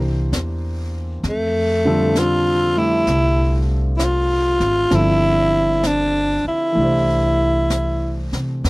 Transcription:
Already playing: upright bass C2, grand piano E3 A#3 D4 G4 C5
0.32 upright bass E2, brush sweep, snare, hi-hat pedal
1.23 upright bass F2, brush sweep, snare
1.29 tenor saxophone A3
1.85 grand piano D3 F3 G3 C4 A4
2.15 tenor saxophone F4, brush sweep, snare, hi-hat pedal
2.76 grand piano G3 A3 G4 E5, tenor saxophone E4
3.07 upright bass C2, brush sweep, snare
3.97 tenor saxophone E4, brush sweep, snare, hi-hat pedal
4.04 tenor saxophone F4
4.60 upright bass G#1, snare
4.91 upright bass G1, grand piano D3 F3 G3 C4 A4, brush sweep, snare
4.95 tenor saxophone E4
5.83 tenor saxophone D4, brush sweep, snare, hi-hat pedal
6.45 tenor saxophone E4, muted upright bass stroke
6.72 grand piano E3 A3, brush sweep
6.76 upright bass C2, grand piano D4
6.81 grand piano G4 C5
7.70 brush sweep, snare, hi-hat pedal
8.33 upright bass C3, snare
8.64 upright bass F2, brush sweep, snare

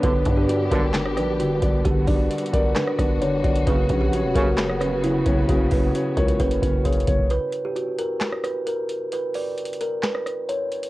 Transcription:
Already playing: string section D3 B3
0.03 808-style bass G1, brass ensemble B1 G2 D3, grand piano D3, string section G3 G4, kalimba B4, kick, closed hi-hat
0.25 808-style bass G2, grand piano D4, kick, closed hi-hat
0.37 kalimba G4
0.49 kalimba F#4, grand piano D5, closed hi-hat
0.71 808-style bass G1, brass ensemble B1 G2 D3, kalimba A#4, grand piano D5, kick, closed hi-hat
0.94 grand piano D3, snare, clap, closed hi-hat
1.06 cross-stick
1.17 808-style bass A#1, grand piano D4, kalimba B4, cross-stick, closed hi-hat
1.39 808-style bass G1, grand piano D3, kalimba F#4, closed hi-hat
1.62 808-style bass G1, grand piano D5, kick, closed hi-hat
1.85 808-style bass G1, grand piano D3, string section F#4, kalimba G4, kick, closed hi-hat
2.07 808-style bass G1, grand piano D4, kalimba D5, kick, open hi-hat
2.30 grand piano D5, closed hi-hat
2.38 closed hi-hat
2.46 closed hi-hat
2.53 808-style bass G1, kalimba A#4, grand piano D5, kick, closed hi-hat
2.76 grand piano D3, kalimba B4, snare, clap, closed hi-hat
2.87 cross-stick
2.99 808-style bass G1, grand piano D4, kick, cross-stick, closed hi-hat
3.21 grand piano D3, kalimba C#5, closed hi-hat
3.44 808-style bass G1, grand piano D5, kick, closed hi-hat
3.56 closed hi-hat
3.67 808-style bass F#1, brass ensemble F#2 C#3, grand piano C#3, string section C#3 F#3 B3, kalimba B4, kick, closed hi-hat
3.89 808-style bass A#1, grand piano C#4, kick, closed hi-hat
4.01 kalimba G4
4.12 kalimba F#4, grand piano C#5, closed hi-hat
4.24 808-style bass E1
4.35 808-style bass F#1, brass ensemble F#2 C#3, kalimba A#4, grand piano C#5, kick, closed hi-hat
4.58 grand piano C#3, snare, clap, closed hi-hat
4.69 cross-stick
4.80 grand piano C#4, kalimba B4, cross-stick, closed hi-hat
5.03 grand piano C#3, kalimba E4, closed hi-hat
5.26 808-style bass F#1, grand piano C#5, kick, closed hi-hat
5.49 808-style bass F#1, grand piano C#3, kalimba F#4, kick, closed hi-hat
5.71 808-style bass F#1, grand piano C#4, kalimba B4, kick, open hi-hat
5.94 grand piano C#5, closed hi-hat
6.17 808-style bass C#2, kalimba A#4, grand piano C#5, kick, closed hi-hat
6.28 closed hi-hat
6.40 808-style bass F#1, grand piano C#3, kalimba B4, kick, closed hi-hat
6.51 closed hi-hat
6.62 808-style bass F#1, grand piano C#4, kick, closed hi-hat
6.74 kick
6.85 grand piano C#3, kalimba C#5, kick, closed hi-hat
6.93 closed hi-hat
7.00 closed hi-hat
7.08 808-style bass F#1, grand piano C#5, kick, closed hi-hat
7.19 kick
7.30 kalimba B4, closed hi-hat
7.53 closed hi-hat
7.65 kalimba G4
7.76 kalimba F#4, closed hi-hat
7.99 kalimba A#4, closed hi-hat
8.21 snare, clap, closed hi-hat
8.33 cross-stick
8.44 kalimba B4, cross-stick, closed hi-hat
8.67 kalimba A#4, closed hi-hat
8.89 closed hi-hat
9.12 kalimba B4, closed hi-hat
9.35 kalimba D5, open hi-hat
9.58 closed hi-hat
9.65 closed hi-hat
9.73 closed hi-hat
9.81 kalimba A#4, closed hi-hat
10.03 kalimba B4, snare, clap, closed hi-hat
10.15 cross-stick
10.26 cross-stick, closed hi-hat
10.49 kalimba C#5, closed hi-hat
10.71 closed hi-hat
10.83 closed hi-hat

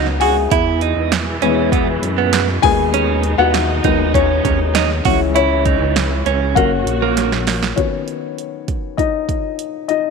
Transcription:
Already playing: analog synth bass C#2, string section C#3 B3 D#4, upright piano D#3 B3 C#4 F#4 G#4 B4 F#5 G#5 B5
0.06 snare
0.20 clean electric guitar F#4, upright piano G#4 G#5, open hi-hat
0.51 analog synth bass E2, string section B2 E3 G#3, clean electric guitar E4, kick, closed hi-hat
0.81 clean electric guitar D#4, closed hi-hat
0.96 analog synth bass E2
1.12 snare, closed hi-hat
1.42 analog synth bass E2, upright piano E3 G#3 B3, clean electric guitar C#4, closed hi-hat
1.72 clean electric guitar B3, kick, closed hi-hat
2.02 analog synth bass F#2, closed hi-hat
2.18 clean electric guitar B3
2.33 snare, closed hi-hat
2.48 snare
2.62 analog synth bass D#2, upright piano D#3 G#3 B3 G#4 G#5, string section D#4, kick, open hi-hat
2.94 clean electric guitar C#4, closed hi-hat
3.23 closed hi-hat
3.38 analog synth bass D#2, clean electric guitar B3, upright piano F#4 F#5
3.54 snare, closed hi-hat
3.84 analog synth bass D#2, upright piano D#3 G#3 B3, clean electric guitar D#4, kick, closed hi-hat
4.14 clean electric guitar C#4, upright piano C#4 C#5, kick, closed hi-hat
4.45 analog synth bass D#2, clean electric guitar C#4, kick, closed hi-hat
4.75 clean electric guitar D#4, snare, closed hi-hat
4.90 snare
5.05 analog synth bass C#2, string section C#3 E3, upright piano E3 G#3 C#4, clean electric guitar F#4, kick, open hi-hat
5.35 upright piano C#4 C#5, clean electric guitar E4, closed hi-hat
5.65 clean electric guitar D#4, kick, closed hi-hat
5.81 analog synth bass C#2
5.96 snare, closed hi-hat
6.26 analog synth bass C#2, clean electric guitar C#4, closed hi-hat
6.55 analog synth bass F#1, upright piano F#3 A#3 C#4 F#4 F#5, clean electric guitar A#3, string section A#3 F#4, kick, closed hi-hat
6.86 analog synth bass A#1, closed hi-hat
7.02 clean electric guitar A#3
7.17 snare, closed hi-hat
7.32 snare
7.47 snare, open hi-hat
7.63 snare
7.76 upright piano D#3 F#3 B3 C#4 C#5, kick, closed hi-hat
8.08 closed hi-hat
8.38 closed hi-hat
8.68 kick, closed hi-hat
8.97 upright piano D#4 D#5, kick, closed hi-hat
9.29 kick, closed hi-hat
9.59 closed hi-hat
9.88 upright piano D#4 D#5, closed hi-hat

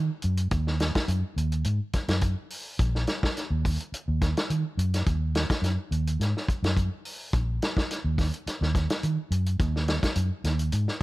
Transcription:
0.22 fingered electric bass F#2, closed hi-hat
0.37 closed hi-hat
0.51 fingered electric bass D#2, kick, closed hi-hat
0.67 snare
0.80 snare, closed hi-hat
0.95 kick, snare, closed hi-hat
1.08 fingered electric bass F#2, closed hi-hat
1.36 fingered electric bass D#2, closed hi-hat
1.52 closed hi-hat
1.64 fingered electric bass G#2, closed hi-hat
1.93 muted fingered electric bass stroke, kick, snare, closed hi-hat
2.08 fingered electric bass F#2, snare, closed hi-hat
2.21 kick, closed hi-hat
2.50 open hi-hat
2.79 fingered electric bass A#1, kick, closed hi-hat
2.95 snare
3.07 snare, closed hi-hat
3.23 kick, snare
3.37 snare, closed hi-hat
3.50 fingered electric bass D#2
3.65 kick, open hi-hat
3.80 closed hi-hat
3.92 muted fingered electric bass stroke, closed hi-hat
4.08 fingered electric bass D#2
4.22 kick, snare, closed hi-hat
4.37 snare, closed hi-hat
4.50 fingered electric bass D#3, closed hi-hat
4.77 fingered electric bass F#2, closed hi-hat
4.94 snare, closed hi-hat
5.06 fingered electric bass D#2, kick, closed hi-hat
5.35 snare, closed hi-hat
5.50 muted fingered electric bass stroke, kick, snare, closed hi-hat
5.62 fingered electric bass F#2, snare, closed hi-hat
5.91 fingered electric bass D#2, closed hi-hat
6.07 closed hi-hat
6.20 fingered electric bass G#2, snare, closed hi-hat
6.37 snare
6.48 muted fingered electric bass stroke, kick, closed hi-hat
6.63 fingered electric bass F#2, snare, closed hi-hat
6.77 kick, closed hi-hat
7.05 open hi-hat
7.33 fingered electric bass A#1, kick, closed hi-hat
7.62 snare, closed hi-hat
7.77 kick, snare
7.91 snare, closed hi-hat
8.04 fingered electric bass D#2
8.18 kick, snare, open hi-hat
8.34 closed hi-hat
8.46 muted fingered electric bass stroke, snare, closed hi-hat
8.61 fingered electric bass D#2, snare
8.75 kick, snare, closed hi-hat
8.90 snare, closed hi-hat
9.03 fingered electric bass D#3, closed hi-hat
9.31 fingered electric bass F#2, closed hi-hat
9.46 closed hi-hat
9.59 fingered electric bass D#2, kick, closed hi-hat
9.76 snare
9.88 snare, closed hi-hat
10.03 kick, snare, closed hi-hat
10.15 fingered electric bass F#2, closed hi-hat
10.44 fingered electric bass D#2, snare, closed hi-hat
10.59 closed hi-hat
10.72 fingered electric bass G#2, closed hi-hat
10.88 snare

